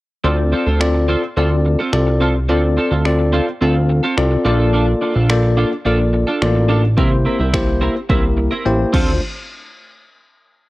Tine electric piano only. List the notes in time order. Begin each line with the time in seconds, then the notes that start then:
0.24 C4 F4 A4 D5
0.80 C4 F4 A4 D5
1.37 C4 F4 A4 D5
1.93 C4 F4 A4 D5
2.49 C4 F4 A4 D5
3.05 C4 F4 A4 D5
3.61 C4 F4 A4 F5
4.18 C4 F4 A4 D5
4.45 A#3 F4 A4 D5
5.30 A#3 F4 A4 D5
5.86 A#3 F4 A4 D5
6.42 A#3 F4 A4 D5
6.98 A#3 E4 G4 C5
7.53 A#3 E4 G4 C5
8.09 A#3 E4 G4 A#4
8.66 A#3 E4 G4 C5 G5
8.94 A3 D4 F4 C5